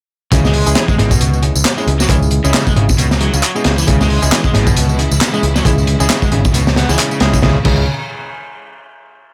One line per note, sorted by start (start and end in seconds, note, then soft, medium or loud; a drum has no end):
0.32 0.62 C#2 medium
0.32 0.43 C#3 medium
0.32 0.64 G#3 medium
0.32 0.64 C#4 medium
0.32 0.64 E4 medium
0.32 0.64 G#4 medium
0.32 kick loud
0.32 closed hi-hat medium
0.32 tambourine medium
0.44 0.75 G#3 loud
0.44 snare soft
0.44 tambourine soft
0.53 open hi-hat medium
0.66 0.74 C#2 medium
0.66 0.85 G#3 medium
0.66 0.85 C#4 medium
0.66 0.85 E4 medium
0.66 0.85 G#4 loud
0.66 closed hi-hat soft
0.66 tambourine medium
0.75 0.84 E3 medium
0.75 snare loud
0.75 clap loud
0.75 closed hi-hat medium
0.75 tambourine medium
0.88 0.95 G#3 medium
0.88 kick loud
0.88 tambourine soft
0.98 1.16 G#1 medium
0.98 1.42 B2 medium
0.98 1.12 G#3 medium
0.98 1.12 C#4 medium
0.98 1.12 E4 medium
0.98 1.12 G#4 medium
0.98 snare soft
0.98 closed hi-hat medium
1.11 kick medium
1.11 tambourine medium
1.20 1.50 C#2 medium
1.20 closed hi-hat medium
1.20 tambourine medium
1.33 tambourine soft
1.43 1.56 G#3 medium
1.43 1.56 C#4 medium
1.43 1.56 E4 medium
1.43 1.56 G#4 medium
1.43 closed hi-hat medium
1.55 1.63 C#2 medium
1.55 tambourine medium
1.65 snare loud
1.65 clap loud
1.65 closed hi-hat medium
1.65 tambourine medium
1.78 1.83 G#3 medium
1.78 1.96 G#3 medium
1.78 1.96 C#4 medium
1.78 1.96 E4 medium
1.78 1.96 G#4 medium
1.78 tambourine soft
1.87 2.05 C#2 medium
1.87 closed hi-hat medium
2.00 2.08 F#3 loud
2.00 snare medium
2.00 tambourine medium
2.09 2.39 C#2 loud
2.09 2.14 E3 medium
2.09 2.41 G#3 medium
2.09 2.41 C#4 medium
2.09 2.41 E4 medium
2.09 2.41 G#4 medium
2.09 kick loud
2.09 closed hi-hat medium
2.09 tambourine medium
2.22 tambourine soft
2.31 closed hi-hat medium
2.44 2.52 C#2 medium
2.44 2.65 C#3 loud
2.44 2.62 G#3 medium
2.44 2.62 C#4 medium
2.44 2.62 E4 medium
2.44 2.62 G#4 loud
2.44 tambourine medium
2.54 snare loud
2.54 clap loud
2.54 closed hi-hat medium
2.54 tambourine medium
2.67 2.72 G#3 medium
2.67 kick medium
2.67 tambourine soft
2.76 2.94 G#1 medium
2.76 2.84 C#3 medium
2.76 2.89 G#3 medium
2.76 2.89 C#4 medium
2.76 2.89 E4 medium
2.76 2.89 G#4 medium
2.76 closed hi-hat medium
2.89 kick loud
2.89 tambourine medium
2.98 3.28 C#2 medium
2.98 3.06 B2 loud
2.98 closed hi-hat medium
2.98 tambourine medium
3.11 snare medium
3.11 tambourine soft
3.21 3.32 F#3 medium
3.21 3.34 G#3 medium
3.21 3.34 C#4 medium
3.21 3.34 E4 medium
3.21 3.34 G#4 medium
3.21 closed hi-hat medium
3.33 3.41 C#2 medium
3.33 3.42 C#3 medium
3.33 tambourine medium
3.43 3.51 F#3 loud
3.43 clap loud
3.43 closed hi-hat medium
3.43 tambourine medium
3.55 3.64 B2 medium
3.55 3.73 G#3 medium
3.55 3.73 C#4 medium
3.55 3.74 E4 medium
3.55 3.74 G#4 loud
3.55 tambourine soft
3.64 3.83 C#2 medium
3.64 3.73 C#3 medium
3.64 snare loud
3.64 closed hi-hat medium
3.78 3.84 E3 loud
3.78 tambourine medium
3.87 4.18 C#2 loud
3.87 7.39 C#3 medium
3.87 3.99 C#3 medium
3.87 7.40 E3 medium
3.87 4.19 G#3 medium
3.87 7.40 G#3 medium
3.87 4.19 C#4 medium
3.87 4.19 E4 medium
3.87 7.39 E4 medium
3.87 4.19 G#4 medium
3.87 kick loud
3.87 closed hi-hat medium
3.87 tambourine medium
4.00 4.31 G#3 loud
4.00 snare soft
4.00 tambourine soft
4.10 open hi-hat medium
4.22 4.30 C#2 medium
4.22 4.40 G#3 loud
4.22 4.40 C#4 medium
4.22 4.40 E4 medium
4.22 4.40 G#4 loud
4.22 closed hi-hat soft
4.22 tambourine medium
4.32 4.40 E3 medium
4.32 snare loud
4.32 clap loud
4.32 closed hi-hat medium
4.32 tambourine medium
4.44 4.50 G#3 medium
4.44 kick medium
4.44 tambourine soft
4.53 4.72 G#1 medium
4.53 4.98 B2 medium
4.53 4.67 G#3 medium
4.53 4.67 C#4 medium
4.53 4.67 E4 medium
4.53 4.67 G#4 medium
4.53 snare soft
4.53 closed hi-hat medium
4.67 kick loud
4.67 tambourine medium
4.76 5.06 C#2 medium
4.76 closed hi-hat loud
4.76 tambourine medium
4.89 tambourine soft
4.99 5.12 G#3 medium
4.99 5.12 C#4 medium
4.99 5.12 E4 medium
4.99 5.12 G#4 medium
4.99 closed hi-hat medium
5.11 5.18 C#2 medium
5.11 tambourine medium
5.21 snare loud
5.21 clap loud
5.21 closed hi-hat medium
5.21 tambourine medium
5.33 5.51 G#3 medium
5.33 5.39 G#3 medium
5.33 5.51 C#4 medium
5.33 5.51 E4 medium
5.33 5.51 G#4 loud
5.33 tambourine soft
5.43 5.60 C#2 medium
5.43 closed hi-hat medium
5.56 5.64 F#3 loud
5.56 snare medium
5.56 tambourine medium
5.65 5.95 C#2 loud
5.65 5.70 E3 medium
5.65 5.97 G#3 medium
5.65 5.97 C#4 medium
5.65 5.97 E4 medium
5.65 5.97 G#4 medium
5.65 kick loud
5.65 closed hi-hat medium
5.65 tambourine medium
5.78 tambourine soft
5.87 closed hi-hat medium
6.00 6.07 C#2 loud
6.00 6.21 C#3 loud
6.00 6.18 G#3 medium
6.00 6.18 C#4 medium
6.00 6.18 E4 medium
6.00 6.18 G#4 loud
6.00 tambourine medium
6.09 snare loud
6.09 clap loud
6.09 closed hi-hat loud
6.09 tambourine medium
6.22 6.28 G#3 medium
6.22 kick loud
6.22 tambourine soft
6.32 6.49 G#1 medium
6.32 6.39 C#3 medium
6.32 6.45 G#3 medium
6.32 6.45 C#4 medium
6.32 6.45 E4 medium
6.32 6.45 G#4 medium
6.32 closed hi-hat medium
6.45 kick loud
6.45 tambourine medium
6.54 6.84 C#2 medium
6.54 6.62 B2 loud
6.54 closed hi-hat medium
6.54 tambourine medium
6.67 snare medium
6.67 tambourine soft
6.76 6.88 B3 medium
6.76 snare loud
6.76 closed hi-hat medium
6.89 6.96 C#2 medium
6.89 6.98 E3 medium
6.89 7.18 G#3 medium
6.89 7.18 C#4 medium
6.89 7.18 E4 medium
6.89 7.18 G#4 loud
6.89 snare soft
6.89 tambourine medium
6.98 7.10 C#3 medium
6.98 clap loud
6.98 closed hi-hat medium
6.98 tambourine medium
7.11 7.20 C#3 medium
7.11 tambourine soft
7.20 7.38 C#2 medium
7.20 7.25 G#3 medium
7.20 7.40 G#3 medium
7.20 7.40 C#4 medium
7.20 7.40 E4 medium
7.20 7.40 G#4 loud
7.20 snare loud
7.20 closed hi-hat medium
7.33 7.37 B2 medium
7.33 kick medium
7.33 tambourine medium
7.42 7.56 C#2 loud
7.42 7.57 C#3 medium
7.42 7.64 C#3 medium
7.42 7.64 E3 medium
7.42 7.56 G#3 medium
7.42 7.64 G#3 medium
7.42 7.56 C#4 medium
7.42 7.56 E4 medium
7.42 7.64 E4 medium
7.42 7.56 G#4 medium
7.42 kick loud
7.42 snare medium
7.65 7.86 C#2 loud
7.65 7.86 C#3 medium
7.65 7.82 G#3 medium
7.65 7.82 C#4 medium
7.65 7.82 E4 medium
7.65 7.82 G#4 loud
7.65 kick loud
7.65 crash medium